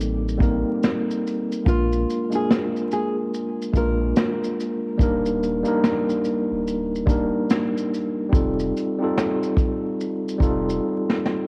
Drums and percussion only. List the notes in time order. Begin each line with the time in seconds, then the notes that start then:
0.01 shaker
0.29 shaker
0.40 kick, closed hi-hat, shaker
0.83 snare, shaker
1.11 shaker
1.27 closed hi-hat, shaker
1.52 shaker
1.66 kick, shaker
1.93 shaker
2.10 closed hi-hat, shaker
2.32 shaker
2.51 snare, shaker
2.77 shaker
2.91 closed hi-hat, shaker
3.34 shaker
3.62 shaker
3.73 kick, closed hi-hat, shaker
4.16 snare, shaker
4.44 shaker
4.60 closed hi-hat, shaker
4.99 kick, shaker
5.26 shaker
5.43 closed hi-hat, shaker
5.65 shaker
5.84 snare, shaker
6.10 shaker
6.24 closed hi-hat, shaker
6.68 shaker
6.95 shaker
7.07 kick, closed hi-hat, shaker
7.50 snare, shaker
7.78 shaker
7.94 closed hi-hat, shaker
8.33 kick, shaker
8.59 shaker
8.77 closed hi-hat, shaker
9.17 snare, shaker
9.43 shaker
9.57 kick, closed hi-hat, shaker
10.01 shaker
10.29 shaker
10.40 kick, closed hi-hat, shaker
10.70 shaker
11.10 snare
11.26 snare